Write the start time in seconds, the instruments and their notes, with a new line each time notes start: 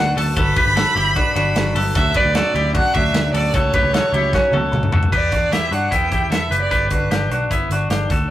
Already playing: picked electric bass D2, steel-string acoustic guitar D3 F#3 A3, clean electric guitar D4 F#4, violin F#5
0.00 steel-string acoustic guitar C#4
0.15 picked electric bass D2, steel-string acoustic guitar F#3 A3 C#4, clean electric guitar F#4 A4, violin A5, open hi-hat, ride
0.35 picked electric bass G1, steel-string acoustic guitar G2 D3 F#3 B3 D4, clean electric guitar F#4 A4, violin B5, kick, hi-hat pedal, ride
0.56 steel-string acoustic guitar F#3 B3 D4, clean electric guitar G4 B4, kick, ride
0.66 picked electric bass G1
0.75 steel-string acoustic guitar D3 F#3 B3 D4, clean electric guitar F#4 A4, snare, ride
0.95 picked electric bass G1, steel-string acoustic guitar F#3 B3 D4, clean electric guitar E4 G4, ride
1.15 steel-string acoustic guitar G2 D3 F#3 B3 D4, clean electric guitar D4 F#4, kick, ride
1.35 picked electric bass G1, steel-string acoustic guitar F#3 B3 D4, clean electric guitar D4 F#4, ride
1.55 picked electric bass G1, steel-string acoustic guitar D3 F#3 B3 D4, snare, ride
1.75 picked electric bass G1, steel-string acoustic guitar F#3 B3 D4, clean electric guitar F#4 A4, open hi-hat, ride
1.94 picked electric bass D2, steel-string acoustic guitar D3 F#3 A3 C#4, clean electric guitar F#4 A4, violin E5, kick, hi-hat pedal, ride
2.14 steel-string acoustic guitar F#3 A3 C#4, clean electric guitar G4 B4, violin D5, kick, ride
2.25 picked electric bass D2
2.35 steel-string acoustic guitar D3 F#3 A3 C#4, clean electric guitar F#4 A4, snare, ride
2.54 picked electric bass D2, steel-string acoustic guitar F#3 A3 C#4, clean electric guitar E4 G4, ride
2.74 steel-string acoustic guitar D3 F#3 A3 C#4, clean electric guitar D4 F#4, violin F#5, kick, ride
2.94 picked electric bass D2, steel-string acoustic guitar F#3 A3 C#4, clean electric guitar D4 F#4, violin E5, kick, ride
3.13 picked electric bass D2, steel-string acoustic guitar D3 F#3 A3 C#4, snare, ride
3.32 picked electric bass D2, steel-string acoustic guitar F#3 A3 C#4, clean electric guitar F#4 A4, violin D5, open hi-hat, ride
3.53 picked electric bass C#2, steel-string acoustic guitar C#3 F#3 A3 C#4, clean electric guitar F#4 A4, violin C#5, kick, hi-hat pedal, ride
3.72 steel-string acoustic guitar F#3 A3 C#4, clean electric guitar G4 B4, kick, ride
3.83 picked electric bass C#2
3.93 steel-string acoustic guitar C#3 F#3 A3 C#4, clean electric guitar F#4 A4, snare, ride
4.12 picked electric bass C#2, steel-string acoustic guitar F#3 A3 C#4, clean electric guitar E4 G4, ride
4.33 steel-string acoustic guitar C#3 F#3 A3 C#4, clean electric guitar C#4 F#4, kick, snare
4.52 picked electric bass C#2, steel-string acoustic guitar F#3 A3 C#4, clean electric guitar F#4 A4, high tom
4.72 picked electric bass C#2, steel-string acoustic guitar C#3 F#3 A3 C#4, mid tom
4.83 mid tom
4.92 picked electric bass C#2, steel-string acoustic guitar F#3 A3 C#4, clean electric guitar F#4 A4, floor tom
5.03 floor tom
5.12 picked electric bass E2, clean electric guitar G4 B4, violin D5, kick, crash
5.32 picked electric bass E2, clean electric guitar D4 F#4, kick, closed hi-hat
5.51 picked electric bass E2, clean electric guitar E4 G4, violin E5, snare, closed hi-hat
5.71 picked electric bass G2, clean electric guitar D4 F#4, violin F#5, closed hi-hat
5.91 picked electric bass E2, clean electric guitar B3 E4, violin G5, kick, closed hi-hat
6.12 picked electric bass E2, clean electric guitar E4 G4, kick, closed hi-hat
6.30 picked electric bass E2, clean electric guitar E4 A4, violin E5, snare, closed hi-hat
6.50 picked electric bass F#1, clean electric guitar G4 B4, closed hi-hat
6.61 violin D5
6.71 picked electric bass G1, clean electric guitar G4 B4, kick, closed hi-hat
6.91 picked electric bass G1, clean electric guitar D4 F#4, violin B4, kick, closed hi-hat
7.11 picked electric bass G1, clean electric guitar D4 G4, snare, closed hi-hat
7.31 picked electric bass B1, clean electric guitar D4 F#4, closed hi-hat
7.51 picked electric bass G1, clean electric guitar B3 E4, kick, closed hi-hat
7.70 picked electric bass G1, clean electric guitar D4 F#4, closed hi-hat
7.90 picked electric bass G1, clean electric guitar D4 G4, snare, closed hi-hat
8.10 picked electric bass D2, clean electric guitar F#4 A4, kick, closed hi-hat